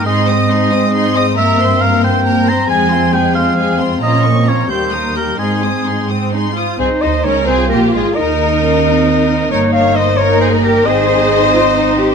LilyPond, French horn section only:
\new Staff \with { instrumentName = "French horn section" } { \time 6/8 \key aes \major \tempo 4. = 90 << { c'2. | c'2.~ | c'2. | des'8. c'8. bes4. |
c'2~ c'8 r8 | r2. | r2. | r2. |
r2. | } \\ { aes2. | bes2. | aes2. | f4. g4. |
aes2~ aes8 r8 | r2. | r2. | r2. |
r2. | } >> }